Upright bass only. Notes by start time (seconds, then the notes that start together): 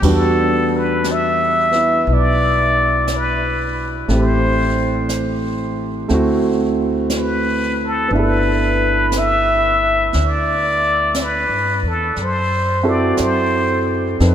0.03 E2
2.07 B1
4.09 A1
6.10 D2
8.11 G1
10.14 D2
11.49 G2
11.83 E2
12.17 F#2
13.19 F#2
14.20 F2